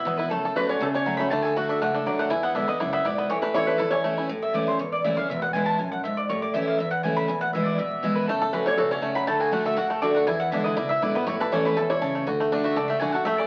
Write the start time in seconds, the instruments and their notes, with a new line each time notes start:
Already playing: steel-string acoustic guitar B2, five-string banjo E4, mandolin E5
0.05 upright bass G#1, steel-string acoustic guitar E2, five-string banjo B3
0.18 five-string banjo E4, mandolin B4
0.30 upright bass F#1, steel-string acoustic guitar F#2, five-string banjo A3, mandolin A4
0.45 five-string banjo A4
0.56 upright bass A1, steel-string acoustic guitar F#3 A3 C#4 F#4, five-string banjo F#4, resonator guitar played with a steel bar B4
0.69 five-string banjo C#4, resonator guitar played with a steel bar C#5
0.81 upright bass B1, steel-string acoustic guitar C#3, five-string banjo A3, resonator guitar played with a steel bar A4
0.94 five-string banjo C#4, resonator guitar played with a steel bar C#5
1.05 upright bass C#2, steel-string acoustic guitar F#3 A3 C#4 F#4, five-string banjo F#3
1.17 five-string banjo A3, steel-string acoustic guitar F#4, mandolin B5
1.21 steel-string acoustic guitar C#4
1.30 upright bass D2, steel-string acoustic guitar D3, five-string banjo A3, mandolin A5
1.42 five-string banjo A4, mandolin G#5
1.56 steel-string acoustic guitar D3 A3 D4 F#4, five-string banjo F#4, mandolin F#5
1.69 five-string banjo D4, mandolin E5
1.81 upright bass C#2, steel-string acoustic guitar A2, five-string banjo A3, mandolin F#5
1.94 five-string banjo D4, mandolin A4
2.06 upright bass D2, steel-string acoustic guitar D3 A3 D4 F#4, five-string banjo F#3, mandolin D5
2.19 five-string banjo A3, mandolin F#5
2.30 steel-string acoustic guitar E2, upright bass E2, five-string banjo E4, mandolin G#5
2.43 five-string banjo B3, mandolin F#5
2.54 steel-string acoustic guitar D3 G#3 B3 E4, five-string banjo D4, mandolin E5
2.68 five-string banjo B3, steel-string acoustic guitar B3 E4, mandolin D#5
2.80 upright bass C#2, steel-string acoustic guitar F#2, five-string banjo E4, mandolin D5
2.93 five-string banjo B3, mandolin E5
3.05 upright bass B1, steel-string acoustic guitar G#2, five-string banjo E4, mandolin D5
3.18 five-string banjo B3, mandolin B4
3.29 upright bass A1, steel-string acoustic guitar A2, five-string banjo E3, mandolin C#5
3.42 five-string banjo A3, resonator guitar played with a steel bar B4
3.54 steel-string acoustic guitar E3 A3 C#4 E4, five-string banjo E4, resonator guitar played with a steel bar C#5
3.67 five-string banjo A3, resonator guitar played with a steel bar B4
3.78 upright bass E1, steel-string acoustic guitar E2, five-string banjo E4, resonator guitar played with a steel bar A4
3.90 five-string banjo C#4, resonator guitar played with a steel bar C#5
4.04 steel-string acoustic guitar E3 A3 C#4 E4, five-string banjo A3
4.17 steel-string acoustic guitar C#4 E4, five-string banjo E4
4.29 upright bass A1, steel-string acoustic guitar A2
4.42 mandolin E5
4.54 steel-string acoustic guitar E3 A3 C#4 E4, mandolin D5
4.67 steel-string acoustic guitar C#4 E4, mandolin C5
4.79 upright bass G#1, steel-string acoustic guitar E2, mandolin C#5
4.92 mandolin D5
5.04 upright bass F#1, steel-string acoustic guitar E3 A3 C#4 E4, mandolin E5
5.17 steel-string acoustic guitar C#4 E4, mandolin F5
5.29 upright bass E1, steel-string acoustic guitar E2, mandolin E5
5.42 mandolin F#5
5.53 steel-string acoustic guitar E3 G#3 B3 E4, mandolin G#5
5.66 mandolin A5
5.79 upright bass B1, steel-string acoustic guitar F#2, mandolin G#5
5.92 mandolin F#5
6.04 steel-string acoustic guitar G#2, mandolin E5
6.17 mandolin D5
6.29 upright bass A1, steel-string acoustic guitar A2, mandolin C#5
6.42 mandolin D5
6.54 upright bass A1, steel-string acoustic guitar E3 A3 C#4 E4, mandolin E5
6.67 mandolin F5
6.78 upright bass G#1, steel-string acoustic guitar E2, mandolin E5
6.91 mandolin F#5
7.03 upright bass F#1, steel-string acoustic guitar E3 A3 C#4 E4, mandolin G#5
7.17 mandolin B5
7.28 upright bass E1, steel-string acoustic guitar E2, mandolin G#5
7.41 mandolin F#5
7.53 steel-string acoustic guitar E3 G#3 B3 E4, mandolin E5
7.65 mandolin D5
7.78 upright bass B1, steel-string acoustic guitar B2, mandolin E5
8.03 steel-string acoustic guitar E3 G#3 B3 E4
8.15 mandolin B4
8.27 upright bass F#1, steel-string acoustic guitar F#2, five-string banjo A3, mandolin A4
8.42 five-string banjo A4
8.53 steel-string acoustic guitar F#3 A3 C#4 F#4, five-string banjo C#4, resonator guitar played with a steel bar B4
8.66 five-string banjo A3, resonator guitar played with a steel bar C#5
8.77 upright bass C#2, steel-string acoustic guitar B2, five-string banjo F#4, resonator guitar played with a steel bar A4
8.91 five-string banjo C#4, resonator guitar played with a steel bar C#5
9.02 steel-string acoustic guitar C#3, five-string banjo A3
9.15 five-string banjo F#3, mandolin B5
9.27 upright bass D2, steel-string acoustic guitar D3, five-string banjo A3, mandolin A5
9.40 five-string banjo F#4, mandolin G#5
9.52 steel-string acoustic guitar D3 A3 D4 F#4, five-string banjo A3, mandolin F#5
9.65 five-string banjo A4, mandolin E5
9.76 upright bass A1, steel-string acoustic guitar A2, five-string banjo F#4, mandolin F#5
9.90 five-string banjo A3, mandolin A4
10.02 steel-string acoustic guitar D3 A3 D4 F#4, five-string banjo A4, mandolin D5
10.15 five-string banjo F#4, mandolin F#5
10.27 upright bass E2, steel-string acoustic guitar E2, five-string banjo E4, mandolin G#5
10.40 mandolin F#5
10.52 steel-string acoustic guitar D3 G#3 B3 E4, five-string banjo D4, mandolin E5
10.64 five-string banjo E4, mandolin D#5
10.77 upright bass C#2, steel-string acoustic guitar B2, five-string banjo E4, mandolin D5
10.89 five-string banjo E4, mandolin E5
11.02 steel-string acoustic guitar D3 G#3 B3 E4, five-string banjo E4, mandolin D5
11.14 five-string banjo B3, steel-string acoustic guitar B3 E4, mandolin B4
11.27 upright bass A1, steel-string acoustic guitar A2, five-string banjo E4, mandolin C#5
11.40 five-string banjo A4, resonator guitar played with a steel bar B4
11.52 steel-string acoustic guitar E3 A3 C#4 E4, five-string banjo C#4, resonator guitar played with a steel bar C#5
11.65 five-string banjo E4, resonator guitar played with a steel bar B4
11.77 upright bass E1, steel-string acoustic guitar B2, five-string banjo A4, resonator guitar played with a steel bar A4
11.90 five-string banjo E4, resonator guitar played with a steel bar C#5
12.02 steel-string acoustic guitar C#3, five-string banjo A4
12.15 five-string banjo A3
12.27 upright bass D2, steel-string acoustic guitar D3, five-string banjo F#4
12.40 five-string banjo A3
12.52 steel-string acoustic guitar D3 A3 D4 F#4, five-string banjo D4
12.64 five-string banjo F#4, mandolin E5
12.76 upright bass C#2, steel-string acoustic guitar A2, five-string banjo A4, mandolin D5
12.88 five-string banjo A3, mandolin E5
12.99 steel-string acoustic guitar D3 A3 D4 F#4, five-string banjo F#4, mandolin G#5
13.12 steel-string acoustic guitar D4 F#4, five-string banjo A4, mandolin F#5
13.25 upright bass A1, steel-string acoustic guitar A2, five-string banjo A3, mandolin E5
13.38 five-string banjo C#4, mandolin D5